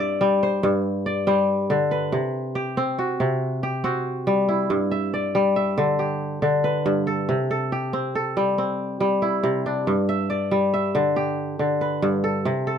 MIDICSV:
0, 0, Header, 1, 2, 480
1, 0, Start_track
1, 0, Key_signature, 1, "major"
1, 0, Tempo, 429799
1, 2369, Time_signature, 12, 3, 24, 8
1, 14275, End_track
2, 0, Start_track
2, 0, Title_t, "Kora"
2, 0, Program_c, 0, 46
2, 0, Note_on_c, 0, 43, 79
2, 0, Note_on_c, 0, 60, 75
2, 0, Note_on_c, 0, 64, 64
2, 0, Note_on_c, 0, 74, 68
2, 0, Note_on_c, 0, 76, 67
2, 232, Note_on_c, 0, 55, 79
2, 479, Note_on_c, 0, 72, 68
2, 560, Note_off_c, 0, 60, 0
2, 693, Note_off_c, 0, 43, 0
2, 707, Note_on_c, 0, 43, 84
2, 908, Note_off_c, 0, 76, 0
2, 1017, Note_off_c, 0, 64, 0
2, 1180, Note_off_c, 0, 74, 0
2, 1184, Note_on_c, 0, 74, 65
2, 1405, Note_off_c, 0, 55, 0
2, 1417, Note_off_c, 0, 72, 0
2, 1418, Note_on_c, 0, 55, 82
2, 1422, Note_on_c, 0, 72, 65
2, 1898, Note_on_c, 0, 50, 73
2, 1945, Note_off_c, 0, 55, 0
2, 2136, Note_on_c, 0, 71, 59
2, 2203, Note_off_c, 0, 72, 0
2, 2372, Note_on_c, 0, 48, 75
2, 2422, Note_off_c, 0, 74, 0
2, 2424, Note_off_c, 0, 43, 0
2, 2424, Note_off_c, 0, 50, 0
2, 2851, Note_on_c, 0, 67, 70
2, 3096, Note_on_c, 0, 60, 76
2, 3163, Note_off_c, 0, 71, 0
2, 3334, Note_on_c, 0, 66, 63
2, 3560, Note_off_c, 0, 48, 0
2, 3574, Note_on_c, 0, 48, 76
2, 4050, Note_off_c, 0, 67, 0
2, 4055, Note_on_c, 0, 67, 67
2, 4122, Note_off_c, 0, 66, 0
2, 4283, Note_off_c, 0, 60, 0
2, 4287, Note_on_c, 0, 60, 72
2, 4288, Note_on_c, 0, 66, 66
2, 4768, Note_on_c, 0, 55, 78
2, 5009, Note_on_c, 0, 64, 61
2, 5248, Note_on_c, 0, 43, 72
2, 5305, Note_off_c, 0, 48, 0
2, 5305, Note_off_c, 0, 55, 0
2, 5316, Note_off_c, 0, 66, 0
2, 5488, Note_on_c, 0, 76, 61
2, 5632, Note_off_c, 0, 67, 0
2, 5736, Note_on_c, 0, 74, 61
2, 5974, Note_on_c, 0, 55, 75
2, 6207, Note_off_c, 0, 76, 0
2, 6211, Note_on_c, 0, 76, 57
2, 6297, Note_off_c, 0, 60, 0
2, 6451, Note_on_c, 0, 50, 73
2, 6506, Note_off_c, 0, 55, 0
2, 6691, Note_on_c, 0, 67, 63
2, 6759, Note_off_c, 0, 64, 0
2, 6974, Note_off_c, 0, 74, 0
2, 7158, Note_off_c, 0, 50, 0
2, 7171, Note_on_c, 0, 50, 77
2, 7366, Note_off_c, 0, 76, 0
2, 7416, Note_on_c, 0, 71, 62
2, 7644, Note_off_c, 0, 43, 0
2, 7657, Note_on_c, 0, 43, 74
2, 7895, Note_on_c, 0, 69, 59
2, 8138, Note_on_c, 0, 48, 73
2, 8188, Note_off_c, 0, 43, 0
2, 8188, Note_off_c, 0, 50, 0
2, 8205, Note_off_c, 0, 71, 0
2, 8268, Note_off_c, 0, 67, 0
2, 8378, Note_off_c, 0, 69, 0
2, 8383, Note_on_c, 0, 69, 64
2, 8624, Note_on_c, 0, 67, 62
2, 8859, Note_on_c, 0, 60, 73
2, 9102, Note_off_c, 0, 69, 0
2, 9106, Note_on_c, 0, 69, 62
2, 9344, Note_on_c, 0, 55, 79
2, 9581, Note_off_c, 0, 60, 0
2, 9585, Note_on_c, 0, 60, 62
2, 10043, Note_off_c, 0, 55, 0
2, 10056, Note_on_c, 0, 55, 76
2, 10201, Note_off_c, 0, 67, 0
2, 10298, Note_on_c, 0, 64, 65
2, 10523, Note_off_c, 0, 48, 0
2, 10536, Note_on_c, 0, 48, 78
2, 10578, Note_off_c, 0, 69, 0
2, 10789, Note_on_c, 0, 62, 61
2, 11025, Note_on_c, 0, 43, 72
2, 11070, Note_off_c, 0, 48, 0
2, 11070, Note_off_c, 0, 55, 0
2, 11266, Note_on_c, 0, 76, 66
2, 11500, Note_on_c, 0, 74, 63
2, 11595, Note_off_c, 0, 60, 0
2, 11742, Note_on_c, 0, 55, 78
2, 11985, Note_off_c, 0, 76, 0
2, 11990, Note_on_c, 0, 76, 62
2, 12048, Note_off_c, 0, 64, 0
2, 12226, Note_on_c, 0, 50, 79
2, 12270, Note_off_c, 0, 55, 0
2, 12468, Note_on_c, 0, 67, 65
2, 12664, Note_off_c, 0, 62, 0
2, 12737, Note_off_c, 0, 74, 0
2, 12934, Note_off_c, 0, 50, 0
2, 12948, Note_on_c, 0, 50, 71
2, 13144, Note_off_c, 0, 76, 0
2, 13191, Note_on_c, 0, 71, 63
2, 13415, Note_off_c, 0, 43, 0
2, 13429, Note_on_c, 0, 43, 74
2, 13667, Note_on_c, 0, 69, 64
2, 13909, Note_on_c, 0, 48, 75
2, 13949, Note_off_c, 0, 43, 0
2, 13949, Note_off_c, 0, 50, 0
2, 13976, Note_off_c, 0, 71, 0
2, 14045, Note_off_c, 0, 67, 0
2, 14145, Note_off_c, 0, 69, 0
2, 14150, Note_on_c, 0, 69, 61
2, 14275, Note_off_c, 0, 48, 0
2, 14275, Note_off_c, 0, 69, 0
2, 14275, End_track
0, 0, End_of_file